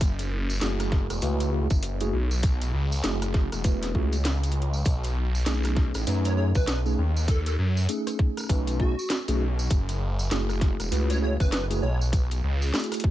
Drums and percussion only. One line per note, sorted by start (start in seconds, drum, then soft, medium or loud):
0.01 kick loud
0.01 closed hi-hat medium
0.01 tambourine medium
0.19 closed hi-hat medium
0.19 tambourine soft
0.50 tambourine medium
0.61 snare loud
0.61 closed hi-hat medium
0.61 tambourine medium
0.80 cross-stick medium
0.80 closed hi-hat medium
0.80 tambourine soft
0.92 kick loud
0.92 snare soft
1.10 cross-stick medium
1.10 closed hi-hat soft
1.10 tambourine medium
1.21 closed hi-hat medium
1.21 tambourine medium
1.40 closed hi-hat medium
1.40 tambourine soft
1.70 kick loud
1.70 tambourine medium
1.83 closed hi-hat medium
1.83 tambourine medium
2.00 closed hi-hat medium
2.00 tambourine soft
2.31 tambourine medium
2.43 kick loud
2.43 closed hi-hat medium
2.43 tambourine medium
2.61 closed hi-hat medium
2.61 tambourine soft
2.92 tambourine medium
3.04 snare loud
3.04 closed hi-hat medium
3.04 tambourine medium
3.22 cross-stick medium
3.22 closed hi-hat medium
3.22 tambourine soft
3.34 kick loud
3.34 snare soft
3.52 cross-stick medium
3.52 closed hi-hat soft
3.52 tambourine medium
3.64 kick loud
3.64 closed hi-hat medium
3.64 tambourine medium
3.82 snare soft
3.82 closed hi-hat medium
3.82 tambourine soft
3.95 kick medium
4.12 closed hi-hat soft
4.12 tambourine medium
4.24 snare loud
4.24 closed hi-hat medium
4.24 tambourine medium
4.43 closed hi-hat medium
4.43 tambourine soft
4.52 closed hi-hat soft
4.62 closed hi-hat soft
4.73 tambourine medium
4.85 kick loud
4.85 closed hi-hat medium
4.85 tambourine medium
5.04 closed hi-hat medium
5.04 tambourine soft
5.35 tambourine medium
5.46 snare loud
5.46 closed hi-hat medium
5.46 tambourine medium
5.63 cross-stick medium
5.63 closed hi-hat medium
5.63 tambourine soft
5.76 kick loud
5.76 snare soft
5.94 cross-stick medium
5.94 closed hi-hat soft
5.94 tambourine medium
6.07 closed hi-hat medium
6.07 tambourine medium
6.24 closed hi-hat medium
6.24 tambourine soft
6.55 kick loud
6.55 tambourine medium
6.67 snare loud
6.67 closed hi-hat medium
6.67 tambourine medium
6.86 tambourine soft
7.17 tambourine medium
7.28 kick loud
7.28 closed hi-hat medium
7.28 tambourine medium
7.46 closed hi-hat medium
7.46 tambourine soft
7.77 tambourine medium
7.89 closed hi-hat medium
7.89 tambourine medium
8.07 cross-stick medium
8.07 closed hi-hat medium
8.07 tambourine soft
8.19 kick loud
8.37 cross-stick medium
8.37 closed hi-hat soft
8.37 tambourine medium
8.40 cross-stick soft
8.44 cross-stick soft
8.47 kick loud
8.47 cross-stick soft
8.47 tambourine medium
8.50 cross-stick soft
8.50 closed hi-hat medium
8.54 cross-stick soft
8.59 cross-stick soft
8.63 cross-stick soft
8.67 closed hi-hat medium
8.67 tambourine soft
8.80 kick medium
8.99 tambourine medium
9.10 snare loud
9.10 closed hi-hat medium
9.10 tambourine medium
9.28 closed hi-hat medium
9.28 tambourine soft
9.59 tambourine medium
9.70 kick loud
9.70 closed hi-hat medium
9.70 tambourine medium
9.89 closed hi-hat medium
9.89 tambourine soft
10.19 tambourine medium
10.31 snare loud
10.31 closed hi-hat medium
10.31 tambourine medium
10.49 cross-stick medium
10.49 tambourine soft
10.61 kick loud
10.61 snare soft
10.61 closed hi-hat medium
10.80 cross-stick soft
10.80 closed hi-hat soft
10.80 tambourine medium
10.92 closed hi-hat medium
10.92 tambourine medium
11.10 closed hi-hat medium
11.10 tambourine soft
11.40 kick loud
11.40 tambourine medium
11.52 snare loud
11.52 closed hi-hat medium
11.52 tambourine medium
11.71 closed hi-hat medium
11.71 tambourine soft
12.01 tambourine medium
12.13 kick loud
12.13 closed hi-hat medium
12.13 tambourine medium
12.31 closed hi-hat medium
12.31 tambourine soft
12.62 tambourine medium
12.74 snare loud
12.74 closed hi-hat soft
12.74 tambourine medium
12.80 closed hi-hat soft
12.84 closed hi-hat soft
12.92 cross-stick soft
12.92 closed hi-hat medium
12.92 tambourine soft
12.94 closed hi-hat medium
13.00 closed hi-hat medium
13.04 kick loud